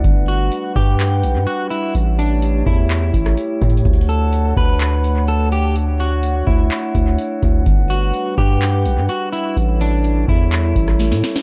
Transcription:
Already playing: glass harmonica D4 F#5
0.04 808-style bass G1, glass harmonica G3 B4, kick, closed hi-hat
0.28 clean electric guitar F#4, closed hi-hat
0.52 closed hi-hat
0.76 808-style bass G2, clean electric guitar G4, kick
1.00 clap, closed hi-hat
1.23 808-style bass B1, closed hi-hat
1.35 808-style bass G2
1.47 clean electric guitar F#4, closed hi-hat
1.70 clean electric guitar E4, closed hi-hat
1.95 808-style bass A1, glass harmonica A3 E4 G4 C#5, closed hi-hat
2.19 clean electric guitar D4, closed hi-hat
2.42 closed hi-hat
2.66 808-style bass E2, clean electric guitar E4, kick
2.90 clap, closed hi-hat
3.14 808-style bass A1, kick, closed hi-hat
3.26 cross-stick
3.37 closed hi-hat
3.62 808-style bass A2, kick, closed hi-hat
3.70 closed hi-hat
3.77 closed hi-hat
3.85 808-style bass D2, glass harmonica D4 F#5, kick, closed hi-hat
3.93 closed hi-hat
4.01 closed hi-hat
4.09 clean electric guitar A4, closed hi-hat
4.33 closed hi-hat
4.57 808-style bass D2, clean electric guitar B4, kick
4.80 clap, closed hi-hat
5.04 closed hi-hat
5.28 clean electric guitar A4, closed hi-hat
5.52 clean electric guitar G4, closed hi-hat
5.76 closed hi-hat
6.00 clean electric guitar F#4, closed hi-hat
6.23 closed hi-hat
6.47 808-style bass D2, clean electric guitar E4, kick
6.71 clap, closed hi-hat
6.95 808-style bass D2, kick, closed hi-hat
7.18 closed hi-hat
7.43 808-style bass D2, kick, closed hi-hat
7.66 808-style bass G1, glass harmonica G3 B4, kick, closed hi-hat
7.90 clean electric guitar F#4, closed hi-hat
8.14 closed hi-hat
8.38 808-style bass G2, clean electric guitar G4, kick
8.62 clap, closed hi-hat
8.85 808-style bass B1, closed hi-hat
8.97 808-style bass G2
9.09 clean electric guitar F#4, closed hi-hat
9.33 clean electric guitar E4, closed hi-hat
9.57 808-style bass A1, glass harmonica E4 A4 C#5, closed hi-hat
9.81 clean electric guitar D4, closed hi-hat
10.04 closed hi-hat
10.28 808-style bass E2, clean electric guitar E4, kick
10.52 clap, closed hi-hat
10.76 808-style bass A1, kick, closed hi-hat
10.88 cross-stick
10.99 snare, closed hi-hat
11.11 808-style bass A2, snare
11.24 snare, closed hi-hat
11.32 closed hi-hat
11.36 snare

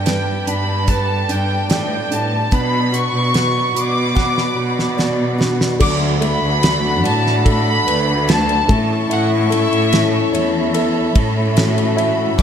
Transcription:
Already playing: cello section G2, grand piano G3 D4, string section G4 B4 D5 A5, violin section G5
0.05 steel-string acoustic guitar G3 B3 D4 A4, grand piano B4, snare, closed hi-hat
0.47 cello section G2, grand piano D4, violin section B5, closed hi-hat
0.87 steel-string acoustic guitar G3 B3 D4 A4, grand piano B4, violin section A5, kick, closed hi-hat
1.29 cello section G2, grand piano D4, violin section G5, closed hi-hat
1.69 cello section A2, steel-string acoustic guitar G3 B3 D4 A4, grand piano D5, violin section G5, snare, closed hi-hat
2.10 cello section A2, grand piano D4, violin section A5, closed hi-hat
2.51 steel-string acoustic guitar B2 F#3 B3 D4 F#4, cello section B2, grand piano B3, string section F#4 B5, violin section B5, kick, closed hi-hat
2.92 steel-string acoustic guitar B3 D4 F#4, grand piano F#4, violin section C#6, closed hi-hat
3.13 cello section B2
3.33 steel-string acoustic guitar F#3 B3 D4 F#4, grand piano B4, snare, closed hi-hat
3.75 cello section B2, grand piano F#4, violin section D6, closed hi-hat
4.15 steel-string acoustic guitar B2 F#3 B3 D4 F#4, grand piano F#5, kick, snare
4.38 snare
4.56 cello section B2, grand piano F#4
4.79 snare
4.97 steel-string acoustic guitar F#3 B3 D4 F#4, grand piano D5, snare
5.38 steel-string acoustic guitar B3 D4 F#4, grand piano F#4, snare
5.61 snare
5.80 cello section D2, grand piano D3, steel-string acoustic guitar D3 F#3 A3 B3 F#4, french horn section D4, string section A4 D5 F#5 B5, violin section D6, kick, crash
6.21 grand piano A3, steel-string acoustic guitar A3 B3 F#4, violin section B5, ride
6.43 cello section D2
6.62 steel-string acoustic guitar F#3 A3 B3 F#4, grand piano F#4, snare, ride
7.04 cello section A2, steel-string acoustic guitar A3 B3 F#4, violin section A5, ride
7.27 snare
7.45 grand piano A4, violin section B5, kick, ride
7.86 cello section D2, steel-string acoustic guitar A3 B3 F#4, grand piano B4, ride
8.28 steel-string acoustic guitar F#3 A3 B3 F#4, violin section A5, snare, ride
8.49 ride
8.68 cello section A2, steel-string acoustic guitar A2 E3 A3 C#4 A4, grand piano A3, french horn section E4, string section C#5 E5 C#6, kick, ride
9.09 cello section A2, grand piano E4, violin section F#5, ride
9.50 steel-string acoustic guitar A3 C#4 A4, grand piano A4, violin section E5, ride
9.72 cello section A2, ride
9.93 steel-string acoustic guitar E3 A3 C#4 A4, snare, ride
10.32 cello section E2, steel-string acoustic guitar A3 C#4 A4, grand piano C#5, string section B5, ride
10.74 grand piano A4, ride
11.15 cello section A2, steel-string acoustic guitar A3 C#4 A4, kick, ride
11.56 steel-string acoustic guitar E3 A3 C#4 A4, french horn section F#4, snare, ride
11.78 ride
11.97 grand piano E4, ride
12.38 cello section G2, grand piano G3, steel-string acoustic guitar G3 B3, french horn section G4, string section D5 G5, kick, ride

